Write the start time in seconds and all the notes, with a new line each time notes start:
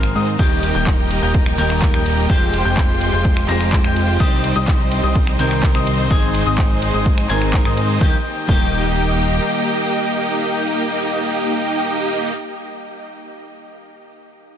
Already playing: G#1 G#2 D#3 G#3 C4 D#4 A#4 C5 G#5 C6
0.03 finger snap, closed hi-hat
0.15 G#2 G#3 C4 D#4 C5 D#5 D#6, open hi-hat
0.27 closed hi-hat
0.38 D#1 D#3 G3 A#3 D#4 G4 A#4 D#5 G5 A#5 G6, kick, closed hi-hat, ride
0.51 closed hi-hat
0.63 open hi-hat, ride
0.75 D#1 A#3 D#4 G4 D#5 G5 G6, closed hi-hat
0.87 kick, clap, closed hi-hat, ride
0.99 closed hi-hat
1.11 open hi-hat, ride
1.22 D#1 A#3 D#4 G4 D#5 G5 G6, closed hi-hat
1.34 kick, closed hi-hat, ride
1.46 finger snap, closed hi-hat
1.57 D#1 D#3 G3 A#3 D#4 G4 A#4 D#5 G5 G6, open hi-hat, ride
1.70 finger snap, clap, closed hi-hat
1.82 kick, clap, closed hi-hat, ride
1.94 D#1 A#3 D#4 G4 D#5 G5 G6, finger snap, closed hi-hat
2.06 open hi-hat, ride
2.18 closed hi-hat
2.28 F1 F3 G#3 C4 F4 G4 C5 G5 C6 G6, kick, closed hi-hat, ride
2.42 closed hi-hat
2.53 open hi-hat, ride
2.65 F1 G#3 F4 G4 C5 G5 G6, closed hi-hat
2.77 kick, clap, closed hi-hat, ride
2.89 closed hi-hat
3.01 open hi-hat, ride
3.13 F1 G#3 F4 G4 C5 G5 G6, closed hi-hat
3.25 kick, closed hi-hat, ride
3.37 finger snap, closed hi-hat
3.48 F1 F3 G#3 C4 F4 G4 C5 A#5 A#6, clap, open hi-hat, ride
3.61 finger snap
3.72 kick, clap, closed hi-hat, ride
3.84 F1 G#3 F4 G4 C5 G5 G6, finger snap, closed hi-hat
3.96 open hi-hat, ride
4.08 closed hi-hat
4.19 C2 D#3 G3 C4 D#4 G4 C5 D#5 C6 D#6, kick, closed hi-hat, ride
4.32 closed hi-hat
4.44 open hi-hat, ride
4.56 C2 G3 C4 D#4 C5 D#5 D#6, closed hi-hat
4.68 kick, clap, closed hi-hat, ride
4.80 closed hi-hat
4.92 open hi-hat, ride
5.03 C2 G3 C4 D#4 C5 D#5 D#6, closed hi-hat
5.15 kick, closed hi-hat, ride
5.27 finger snap, closed hi-hat
5.38 C2 D#3 G3 C4 D#4 A#4 C5 G5 G6, open hi-hat, ride
5.51 finger snap, clap, closed hi-hat
5.63 kick, clap, closed hi-hat, ride
5.75 C2 G3 C4 D#4 C5 D#5 D#6, finger snap, closed hi-hat
5.87 open hi-hat, ride
5.99 closed hi-hat
6.10 G#1 G#2 D#3 G#3 C4 D#4 G#4 C5 D#5 G#5 D#6, kick, closed hi-hat, ride
6.23 closed hi-hat
6.34 open hi-hat, ride
6.46 G#1 G#3 C4 D#4 C5 D#5 D#6, closed hi-hat
6.58 kick, clap, closed hi-hat, ride
6.70 closed hi-hat
6.82 open hi-hat, ride
6.94 G#1 G#3 C4 D#4 C5 D#5 D#6, closed hi-hat
7.06 kick, closed hi-hat, ride
7.18 finger snap, closed hi-hat
7.28 G#1 G#2 D#3 G#3 C4 D#4 A#4 C5 G#5 G#6, clap, open hi-hat, ride
7.42 finger snap, closed hi-hat
7.54 kick, clap, closed hi-hat, ride
7.65 G#2 G#3 C4 D#4 C5 D#5 D#6, finger snap, closed hi-hat
7.77 open hi-hat, ride
7.89 closed hi-hat
7.99 D#1 D#3 G3 A#3 D#4 G4 D#5 G5 G6, kick
8.47 D#1 D#3 G3 A#3 D#4 G4 D#5 G5 G6, kick